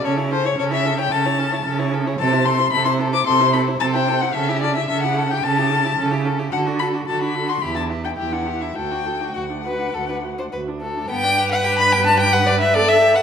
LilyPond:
<<
  \new Staff \with { instrumentName = "Violin" } { \time 4/4 \key a \mixolydian \tempo 4 = 110 cis''8 c''16 cis''16 cis''16 e''8 g''16 a''4. r8 | \key g \major a''8 c'''8 b''16 c'''8 d'''16 c'''8 b''8 a''16 g''8 fis''16 | e''8 d''16 e''16 e''16 fis''8 g''16 a''4. r8 | fis''8 b''8 a''16 b''8 c'''16 b''16 a''8 g''16 g''16 fis''8 e''16 |
g''4 fis''2 r4 | b16 d'16 g'16 b'16 g'16 d'16 b16 d'16 g'16 b'16 g'16 d'16 b16 d'16 g'16 b'16 | }
  \new Staff \with { instrumentName = "Violin" } { \time 4/4 \key a \mixolydian a'16 cis''16 a'16 cis''16 a'16 cis''16 a'16 cis''16 a'16 cis''16 a'16 cis''16 a'16 cis''16 a'16 cis''16 | \key g \major a'16 c''16 a'16 c''16 a'16 c''16 a'16 c''16 a'16 c''16 a'16 c''16 a'16 c''16 a'16 c''16 | a'16 g'16 a'16 g'16 a'16 g'16 a'16 g'16 a'16 g'16 a'16 g'16 a'16 g'16 a'16 g'16 | a'16 fis'16 a'16 fis'16 a'16 fis'16 a'16 fis'16 g'16 e'16 g'16 e'16 g'16 e'16 g'16 e'16 |
a'16 fis'16 a'16 fis'16 fis'8 b'8 a'16 b'8 c''16 b'8 a'8 | g''8. fis''16 g''16 b''16 g''16 a''16 g''16 fis''16 d''16 e''16 d''16 e''8 fis''16 | }
  \new Staff \with { instrumentName = "Viola" } { \time 4/4 \key a \mixolydian cis'16 e'16 cis'16 e'16 cis'16 e'16 cis'16 e'16 cis'16 e'16 cis'16 e'16 cis'16 e'16 cis'16 e'16 | \key g \major c'16 e'16 c'16 e'16 c'16 e'16 c'16 e'16 c'16 e'16 c'16 e'16 c'16 e'16 c'16 e'16 | cis'16 e'16 cis'16 e'16 cis'16 e'16 cis'16 e'16 cis'16 e'16 cis'16 e'16 cis'16 e'16 cis'16 e'16 | fis'16 d'16 fis'16 d'16 fis'16 d'16 fis'16 d'16 e'16 d'16 e'16 d'16 e'16 d'16 e'16 d'16 |
fis'16 d'16 fis'16 d'16 fis'16 d'16 fis'16 d'16 fis'16 d'16 fis'16 d'16 fis'16 d'16 fis'16 d'16 | b'2. a'4 | }
  \new Staff \with { instrumentName = "Cello" } { \clef bass \time 4/4 \key a \mixolydian cis4 cis4 cis4 cis4 | \key g \major c4 c4 c4 c4 | cis4 cis4 cis4 cis4 | d4 d4 e,4 e,4 |
d,4 d,4 d,4 d,4 | g,1 | }
>>